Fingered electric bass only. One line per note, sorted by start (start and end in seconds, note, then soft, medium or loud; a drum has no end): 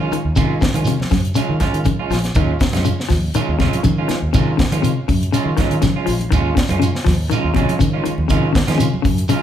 0.11 muted fingered electric bass stroke soft
0.25 0.34 D#2 medium
0.38 0.67 D#3 medium
0.75 0.94 D#3 medium
1.12 1.31 F#2 medium
1.49 1.59 D#3 medium
1.73 1.93 D#3 medium
2.10 2.30 A#1 medium
2.36 2.55 D#2 medium
2.74 2.93 F#2 medium
3.10 3.30 D#2 medium
3.49 3.68 D#2 medium
3.85 4.04 D#3 medium
4.10 muted fingered electric bass stroke soft
4.22 4.31 D#2 medium
4.34 4.64 D#3 loud
4.72 4.91 D#3 medium
5.09 5.28 F#2 medium
5.46 5.55 D#3 medium
5.70 5.90 D#3 medium
6.08 6.27 A#1 loud
6.32 6.52 D#2 loud
6.71 6.90 F#2 medium
7.07 7.26 D#2 medium
7.44 7.64 D#2 medium
7.81 8.00 D#3 medium
8.06 muted fingered electric bass stroke soft
8.18 8.28 D#2 medium
8.31 8.61 D#3 loud
8.68 8.88 D#3 medium
9.05 9.24 F#2 loud